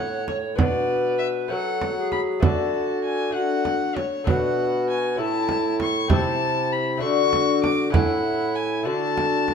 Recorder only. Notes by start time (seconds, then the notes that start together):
Already playing: C#5
0.58 C#5
0.63 B4
1.52 A4 A#4
1.99 G#4
2.44 F#4
3.37 F#4
4.29 F#4
5.21 E4
6.10 E4
7.01 F#4
7.93 E4
8.86 F#4